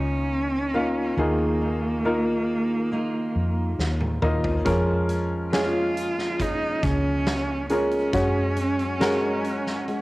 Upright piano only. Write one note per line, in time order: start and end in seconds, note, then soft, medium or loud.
0.00 0.22 A#3 soft
0.00 0.22 D#4 soft
0.00 0.22 F4 soft
0.00 0.23 D#5 medium
0.74 1.16 A#3 soft
0.74 1.16 D#4 soft
0.74 1.16 F4 soft
0.74 1.16 F5 medium
1.18 2.45 D#3 soft
1.18 2.01 A#3 medium
1.18 2.01 D#4 soft
1.18 2.01 F4 soft
1.18 2.01 G#4 medium
2.05 3.70 A#3 soft
2.05 3.70 D#4 soft
2.05 3.70 F4 soft
2.05 3.70 A#4 medium
4.22 4.64 A#3 medium
4.22 4.64 D#4 medium
4.22 4.64 F4 medium
4.22 4.64 D#5 medium
4.65 5.48 G#3 medium
4.65 5.48 C#4 medium
4.65 5.48 F4 medium
4.65 5.48 A#4 medium
5.52 7.18 G#3 medium
5.52 7.18 C#4 medium
5.52 7.18 F4 soft
5.52 7.18 G#4 medium
7.70 8.12 G#3 medium
7.70 8.12 C#4 soft
7.70 8.12 F4 soft
7.70 8.12 A#4 medium
8.13 8.96 G#3 medium
8.13 8.96 C#4 soft
8.13 8.96 F#4 medium
8.13 8.97 C#5 medium
9.00 10.02 G#3 medium
9.00 10.02 C#4 medium
9.00 10.02 F#4 medium
9.00 10.02 A#4 medium